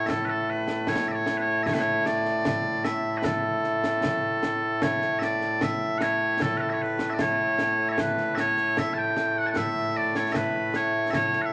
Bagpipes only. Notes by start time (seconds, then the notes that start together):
Already playing: A2 A3
0.06 A4 E5
0.25 B4
0.29 A4
0.50 B4
0.88 C#5
1.08 D5 E5
1.15 C#5
1.37 B4 C#5
1.63 C#5 E5
1.73 B4
1.80 C#5
2.06 D5
2.84 E5
3.17 B4
3.24 A4
4.82 C#5
5.19 E5
5.23 D5
5.62 E5
5.98 F#5
6.02 C#5
6.42 A4
6.57 A4 B4
6.69 C#5 E5
6.81 B4
7.10 D5 E5
7.21 C#5
7.88 C#5 E5
8.00 B4
8.35 E5
8.39 C#5
8.79 E5
8.93 A5
8.98 G5
9.38 F#5
9.46 F#5 A5
9.57 E5
9.96 D5
10.16 C#5
10.32 B4 E5
10.76 C#5
11.10 E5
11.14 C#5
11.41 F#5
11.46 E5